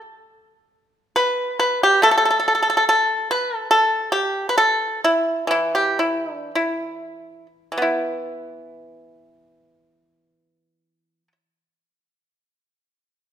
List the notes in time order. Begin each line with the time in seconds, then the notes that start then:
Already playing: A3
1.16 B4
1.60 B4
1.83 G4
2.02 A3 A4
2.18 A4
2.25 A4
2.30 A4
2.40 A4
2.48 A4
2.55 A4
2.62 A4
2.70 A4
2.77 A4
2.89 A4
3.31 B4
3.56 A4
3.71 A4
4.12 G4
4.49 B4
4.58 A4
5.04 E4
5.47 E3 E4
5.75 G4
5.99 E4
6.32 D4
6.55 E4
7.72 E3
7.78 B3
7.82 E4